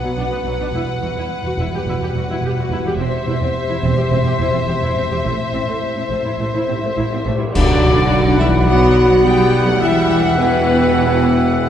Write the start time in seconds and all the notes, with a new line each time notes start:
Already playing: F#3 D4 B4 F#5
0.02 B2 F#3
0.17 B1 B2 D4
0.31 B2 B3
0.45 B1 B2 F#3
0.59 B2 D4
0.73 E1 E2 G3 E4 F#4
1.01 E1 E2 F#4
1.15 E2 E4
1.43 E2 F#4
1.57 E1 E2 E4
1.71 E2 G4
1.86 E1 E2 E4
2.00 E2 G4
2.14 E1 E2 F#4
2.27 E2 E4
2.42 E1 E2 G4
2.56 E2 F#4
2.70 E1 E2 E4
2.85 E2 G4
2.97 E1 E2 C4 G4 C5 E5
3.27 E1 E2 E4
3.40 E2 C4
3.68 E2 E4
3.82 E1 E2 C4
3.97 E2 G4
4.11 E1 E2 C4
4.24 E2 G4
4.38 E1 E2 E4
4.52 E2 C4
4.67 E1 E2 G4
4.82 E2 E4
4.96 E1 E2 C4
5.11 E2 G4
5.24 A1 A2 A3 E4
5.53 A1 A2 C4
5.67 A2 A3
5.96 A2 C4
6.11 A1 A2 A3
6.25 A2 E4
6.39 A1 A2 A3
6.54 A2 E4
6.68 A1 A2 C4
6.83 A2 A3
6.97 A1 A2 E4
7.12 A2 C4
7.26 A1 A2 A3
7.39 A2 E4
7.53 B1 D3 F#3 D4 D5 F#5 B5, concert bass drum, crash
8.38 E3 G3 E4 E5
8.66 F#3 B3 F#4 F#5
9.23 G3 B3 G4 G5
9.65 F#3 A3 F#4 F#5
9.80 E1 E2 E3 G3 E4 E5 G5
10.37 B2 E3 B3 B4